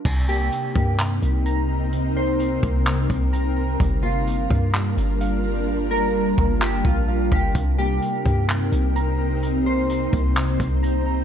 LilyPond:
<<
  \new Staff \with { instrumentName = "Clean electric guitar" } { \time 4/4 \key c \minor \tempo 4 = 128 r8 g'4. r2 | r8 c''4. r2 | r8 f'4. r2 | r8 bes'4. g'8 f'4 g'8 |
r8 g'4. r2 | r8 c''4. r2 | }
  \new Staff \with { instrumentName = "Ambient pad" } { \time 4/4 \key c \minor << { bes'1~ | bes'1~ | bes'1~ | bes'1~ |
bes'1 | c''1 | } \\ { <c c' ees'>1~ | <c c' ees'>1 | <g d' f'>1~ | <g d' f'>1 |
<c c' ees'>1~ | <c c' ees'>1 | } >> }
  \new Staff \with { instrumentName = "Synth keys" } { \time 4/4 \key c \minor c8 bes4 bes8 c4 bes''8 bes''8 | c8 bes4 bes8 c4 bes''8 bes''8 | g8 bes4 bes8 g4 f''8 f''8 | g8 bes4 bes8 g4 f''8 f''8 |
c8 bes4 bes8 c4 bes''8 bes''8 | c8 bes4 bes8 c4 bes''8 bes''8 | }
  \new Staff \with { instrumentName = "808-style bass" } { \clef bass \time 4/4 \key c \minor c,4 r8 g,4 c,4.~ | c,4. c,4 c,4. | g,,4. g,4 g,,4.~ | g,,4. g,,4 bes,,4 g,,8 |
c,4 r8 g,4 c,4.~ | c,4. c,4 c,4. | }
  \new DrumStaff \with { instrumentName = "Drums" } \drummode { \time 4/4 <cymc bd>4 hh8 <hh bd>8 <hc hh>8 hh8 hh4 | hh4 hh8 <hh bd>8 <hc hh>8 <hh bd>8 hh4 | <hh bd>4 hh8 <hh bd>8 <hc hh>8 hh8 hh4 | r4 r8 bd8 hc8 bd8 r8 bd8 |
<hh bd>4 hh8 <hh bd>8 <hc hh>8 hh8 hh4 | hh4 hh8 <hh bd>8 <hc hh>8 <hh bd>8 hh4 | }
>>